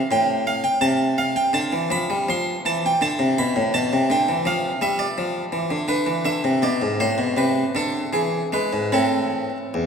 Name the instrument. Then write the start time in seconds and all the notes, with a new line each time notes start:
harpsichord
0.11 A2 G5
0.47 F5
0.64 G5
0.81 C3 A5
1.18 F5
1.36 G5
1.53 D3 A5
1.73 E3
1.90 F3 B5
2.10 G3
2.29 F3 C6
2.65 E3 A5
2.86 G5
3.01 D3 A5
3.19 C3
3.38 B2 B5
3.56 A2
3.74 B2 A5
3.93 C3
4.10 D3 G5
4.29 E3
4.45 F3 F5
4.81 G3 E5
4.99 D5
5.18 F3
5.52 E3
5.71 D3
5.88 D3 B4
6.06 E3
6.25 D3 E5
6.44 C3
6.62 B2 D5
6.82 G#2
7.00 A2 C5
7.18 B2
7.37 C3 B4
7.75 D3 A4
8.13 E3 G#4
8.52 G#3 B4
8.73 G#2
8.92 A2 C4 E4 A4
9.74 E2